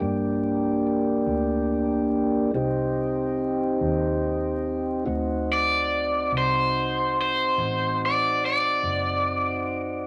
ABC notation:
X:1
M:12/8
L:1/8
Q:3/8=48
K:Dphr
V:1 name="Overdriven electric guitar"
d2 z8 z2 | z d2 c2 c2 d d4 |]
V:2 name="Tonewheel organ"
[B,DG]6 [CEG]6 | [CE^F]12 |]
V:3 name="Fingered electric bass" clef=bass
G,,3 D,,3 C,,3 E,,3 | D,,3 C,,3 A,,,3 ^F,,,3 |]